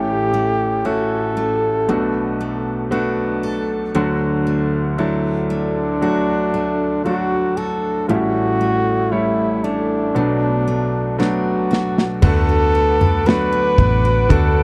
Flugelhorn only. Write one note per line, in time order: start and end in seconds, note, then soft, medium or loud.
0.00 0.88 G4 medium
0.86 2.93 A4 medium
5.51 7.02 D4 medium
7.05 7.58 F#4 medium
7.57 8.08 A4 medium
8.08 9.13 F#4 medium
9.12 9.65 E4 medium
9.64 11.19 D4 medium
11.19 12.06 F#4 medium
12.23 13.28 A4 loud
13.27 14.33 B4 loud
14.31 14.63 A4 medium